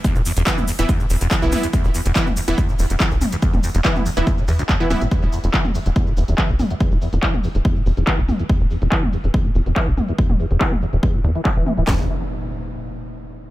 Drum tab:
HH |x-oxx-oxx-oxx-ox|x-oxx-oxx-oxx-ox|x-oxx-oxx-oxx-ox|x-oxx-oxx-oxx-ox|
SH |xxxxxxxxxxxxxxxx|xxxxxxxxxxxxxxxx|xxxxxxxxxxxxxxxx|xxxxxxxxxxxxxxxx|
CP |----x-------x---|----x-------x---|----x-------x---|----x-------x---|
SD |----------------|----------------|----------------|----------------|
T2 |-----o--------o-|-----o--------o-|-o---o--------o-|-----o--------o-|
BD |o---o---o---o---|o---o---o---o---|o---o---o---o---|o---o---o---o---|

HH |x-oxx-oxx-oxx-ox|x-ox--oxx-ox--ox|x-ox--ox--ox--ox|----------------|
SH |xxxxxxxxxxxxxxxx|xxxxxxxxxxxx-xxx|xxxx-xxxxxxx-xxx|----------------|
CP |----x-------x---|----x-------x---|----x-------x---|x---------------|
SD |----------------|----------------|----------------|o---------------|
T2 |-----o--------o-|-----o--------o-|-o---o--------o-|----------------|
BD |o---o---o---o---|o---o---o---o---|o---o---o---o---|o---------------|